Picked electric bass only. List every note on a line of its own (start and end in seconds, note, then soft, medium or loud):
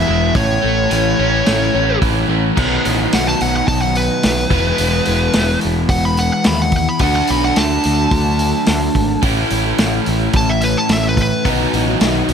0.09 0.30 E1 medium
0.35 0.57 A1 medium
0.64 0.86 A1 medium
0.92 1.13 A1 medium
1.19 1.41 A1 medium
1.48 1.69 A1 medium
1.75 1.96 A1 medium
2.02 2.24 A1 medium
2.28 2.51 A1 medium
2.58 2.78 B1 medium
2.86 3.06 A1 medium
3.14 3.33 B1 medium
3.41 3.61 B1 medium
3.68 4.08 B1 medium
4.25 4.45 B1 medium
4.51 4.71 E1 medium
4.79 4.99 E1 medium
5.07 5.27 E1 medium
5.35 5.55 E1 medium
5.65 5.84 E1 medium
5.89 6.30 E1 medium
6.47 6.87 D#2 medium
7.00 7.21 D2 medium
7.30 7.50 B1 medium
7.57 7.77 D2 medium
7.86 8.05 D2 medium
8.11 8.52 D2 medium
8.68 8.88 D2 medium
8.95 9.16 G#1 medium
9.23 9.43 A1 medium
9.52 9.72 A1 medium
9.79 9.99 A1 medium
10.08 10.28 A1 medium
10.34 10.75 A1 medium
10.89 11.30 A1 medium
11.45 11.66 B1 medium
11.74 11.94 A1 medium
12.01 12.22 B1 medium
12.29 12.33 B1 medium